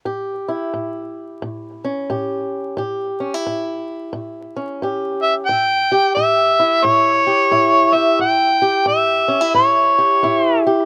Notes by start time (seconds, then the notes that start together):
0.05 A2 G4
0.48 E4
0.74 A2
1.42 A2
1.84 C#4
2.10 A2 G4
2.77 A2 G4
3.20 C#4
3.34 E4
3.47 A2
4.13 A2
4.56 C#4
4.82 A2 G4
5.23 E5
5.46 A2 G5
5.92 G4
6.15 A2 E5
6.59 E4
6.84 A2 C#5
7.27 G4
7.51 A2 E4
7.93 G4 E5
8.19 A2 G5
8.62 G4
8.86 A2 E5
9.28 C#4
9.41 E4
9.54 A2 C#5
9.98 G4
10.23 A2 E4
10.67 G4